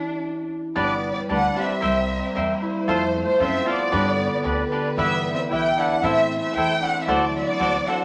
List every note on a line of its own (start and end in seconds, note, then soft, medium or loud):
0.00 1.09 C#4 medium
0.00 0.50 D4 medium
0.00 2.04 E4 medium
0.00 0.72 G4 medium
0.76 1.11 G1 medium
0.76 1.81 G3 medium
0.76 1.28 G3 medium
0.76 1.09 B3 medium
0.76 0.92 D4 medium
0.76 1.82 D4 medium
0.76 0.92 G4 medium
0.76 0.92 B4 medium
0.76 1.81 B4 medium
0.76 0.93 D5 medium
0.76 1.11 D5 medium
1.03 3.83 D4 medium
1.12 1.20 B3 medium
1.12 1.21 D5 medium
1.29 1.47 D2 medium
1.29 1.82 G3 medium
1.29 1.45 D4 medium
1.29 1.59 D4 medium
1.29 1.46 G4 medium
1.29 1.46 B4 medium
1.29 1.46 D5 medium
1.29 1.56 F#5 loud
1.55 2.63 C4 medium
1.55 1.71 D4 medium
1.55 1.72 G4 soft
1.55 3.92 G4 medium
1.55 1.72 B4 soft
1.55 1.72 D5 soft
1.59 2.63 E5 medium
1.81 2.17 C2 medium
1.81 2.34 G3 medium
1.81 2.88 A#3 medium
1.81 2.88 E4 medium
1.81 1.98 A#4 medium
1.81 1.98 C5 medium
1.81 1.98 E5 medium
1.81 1.99 G5 medium
1.85 3.92 C5 medium
2.10 3.14 C4 medium
2.35 2.53 E2 medium
2.35 2.93 G3 medium
2.35 2.51 A#4 medium
2.35 2.52 C5 medium
2.35 2.52 E5 medium
2.35 2.52 G5 medium
2.62 2.94 E4 loud
2.88 3.22 F2 medium
2.88 3.38 F3 medium
2.88 3.91 A3 medium
2.88 3.20 A3 medium
2.88 3.04 F4 medium
2.88 3.92 F4 medium
2.88 3.04 A4 medium
2.88 3.04 C5 medium
2.88 3.21 C5 loud
2.88 3.04 F5 medium
3.15 4.24 C4 medium
3.23 3.43 A3 medium
3.23 3.40 C5 medium
3.39 3.57 F#2 loud
3.39 3.97 F3 medium
3.39 3.67 C4 loud
3.39 3.56 F4 soft
3.39 3.56 A4 medium
3.39 3.56 C5 medium
3.39 3.68 E5 loud
3.39 3.56 F5 medium
3.65 4.69 B3 medium
3.65 5.03 F4 loud
3.65 3.82 F4 medium
3.65 3.82 A4 soft
3.65 3.82 C5 medium
3.65 3.82 F5 medium
3.70 4.70 D5 loud
3.92 4.27 G2 loud
3.92 4.44 D3 medium
3.92 6.03 G3 medium
3.92 4.08 D4 medium
3.92 4.98 D4 medium
3.92 4.08 G4 medium
3.92 4.08 B4 medium
3.92 6.03 B4 medium
3.92 4.08 D5 medium
4.18 5.24 B3 medium
4.44 4.62 D2 medium
4.44 5.03 D3 medium
4.44 4.60 D4 medium
4.44 4.61 G4 medium
4.44 4.61 B4 medium
4.44 4.61 D5 medium
4.70 7.50 D4 medium
4.70 4.87 D4 medium
4.70 4.88 G4 soft
4.70 4.88 B4 soft
4.70 4.88 D5 medium
4.96 5.32 G2 medium
4.96 5.49 E3 medium
4.96 5.30 B3 medium
4.96 5.14 E4 medium
4.96 7.07 E4 medium
4.96 5.14 G4 medium
4.96 5.14 B4 medium
4.96 5.15 E5 medium
4.96 5.32 E5 loud
5.24 6.36 B3 medium
5.33 5.41 C4 medium
5.33 5.43 E5 medium
5.50 5.69 B1 medium
5.50 6.01 E3 medium
5.50 5.78 E4 loud
5.50 5.67 E4 soft
5.50 5.68 G4 medium
5.50 5.68 B4 medium
5.50 5.68 E5 medium
5.50 5.77 G5 loud
5.77 6.05 D4 medium
5.77 6.82 E4 medium
5.77 5.94 E4 soft
5.77 5.94 G4 medium
5.77 5.94 B4 medium
5.77 5.94 E5 medium
5.77 6.04 F#5 medium
6.03 6.37 A2 loud
6.03 6.54 E3 medium
6.03 7.07 A3 medium
6.03 6.37 C4 medium
6.03 6.20 E4 medium
6.03 6.20 A4 medium
6.03 6.20 C5 medium
6.03 7.07 C5 medium
6.03 6.38 E5 loud
6.03 6.20 E5 medium
6.30 7.35 C4 medium
6.38 6.55 C4 medium
6.38 6.55 E5 loud
6.53 6.73 E2 loud
6.53 7.13 E3 medium
6.53 6.82 E4 medium
6.53 6.72 E4 medium
6.53 6.72 C5 medium
6.53 6.82 G5 loud
6.57 6.72 A4 medium
6.57 6.73 E5 medium
6.80 7.01 D4 medium
6.80 8.04 E4 loud
6.80 7.02 F#5 loud
6.99 7.09 C4 medium
6.99 7.08 E5 medium
7.07 7.41 D2 loud
7.07 7.60 F#3 medium
7.07 7.36 A3 medium
7.07 8.04 D4 medium
7.07 7.24 F#4 medium
7.07 8.04 F#4 medium
7.07 7.24 A4 medium
7.07 7.24 C5 loud
7.07 7.36 D5 medium
7.07 8.04 D5 medium
7.07 7.24 D5 loud
7.35 8.04 C4 medium
7.35 7.45 C4 medium
7.35 7.43 E5 medium
7.44 7.89 B3 medium
7.44 7.87 D5 loud
7.60 7.77 D2 medium
7.60 8.04 F#3 medium
7.60 7.76 F#4 medium
7.60 7.76 A4 medium
7.60 7.76 C5 medium
7.60 7.76 D5 medium
7.87 8.04 D4 medium
7.87 8.02 F#4 medium
7.87 8.03 A4 medium
7.87 8.03 C5 medium
7.87 8.03 D5 medium
7.87 8.04 F#5 medium